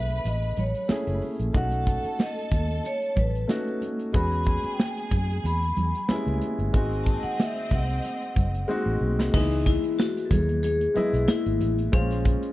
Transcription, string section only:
0, 0, Header, 1, 2, 480
1, 0, Start_track
1, 0, Key_signature, 4, "minor"
1, 0, Tempo, 649351
1, 1144, Time_signature, 4, 2, 24, 8
1, 9258, End_track
2, 0, Start_track
2, 0, Title_t, "String section"
2, 0, Program_c, 0, 48
2, 0, Note_on_c, 0, 71, 80
2, 0, Note_on_c, 0, 83, 84
2, 878, Note_off_c, 0, 71, 0
2, 878, Note_off_c, 0, 83, 0
2, 1138, Note_on_c, 0, 69, 73
2, 1138, Note_on_c, 0, 81, 86
2, 2791, Note_off_c, 0, 69, 0
2, 2791, Note_off_c, 0, 81, 0
2, 3056, Note_on_c, 0, 68, 81
2, 3057, Note_on_c, 0, 80, 93
2, 4710, Note_off_c, 0, 68, 0
2, 4710, Note_off_c, 0, 80, 0
2, 4980, Note_on_c, 0, 75, 82
2, 4982, Note_on_c, 0, 60, 85
2, 6630, Note_off_c, 0, 75, 0
2, 6631, Note_off_c, 0, 60, 0
2, 9258, End_track
0, 0, End_of_file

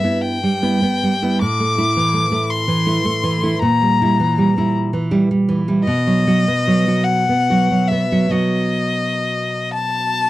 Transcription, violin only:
0, 0, Header, 1, 2, 480
1, 0, Start_track
1, 0, Key_signature, 1, "minor"
1, 0, Tempo, 781250
1, 870, Tempo, 738916
1, 871, Time_signature, 6, 3, 24, 8
1, 3270, Tempo, 776197
1, 4230, Tempo, 833333
1, 5190, Tempo, 925926
1, 6210, End_track
2, 0, Start_track
2, 0, Title_t, "Violin"
2, 0, Program_c, 0, 40
2, 0, Note_on_c, 0, 76, 69
2, 134, Note_on_c, 0, 79, 77
2, 143, Note_off_c, 0, 76, 0
2, 865, Note_off_c, 0, 79, 0
2, 869, Note_on_c, 0, 86, 90
2, 1575, Note_on_c, 0, 84, 71
2, 1584, Note_off_c, 0, 86, 0
2, 2297, Note_off_c, 0, 84, 0
2, 2301, Note_on_c, 0, 82, 81
2, 3014, Note_off_c, 0, 82, 0
2, 3724, Note_on_c, 0, 75, 89
2, 4447, Note_on_c, 0, 78, 75
2, 4456, Note_off_c, 0, 75, 0
2, 4931, Note_on_c, 0, 76, 65
2, 4940, Note_off_c, 0, 78, 0
2, 5180, Note_on_c, 0, 75, 71
2, 5189, Note_off_c, 0, 76, 0
2, 5916, Note_off_c, 0, 75, 0
2, 5920, Note_on_c, 0, 81, 92
2, 6210, Note_off_c, 0, 81, 0
2, 6210, End_track
0, 0, End_of_file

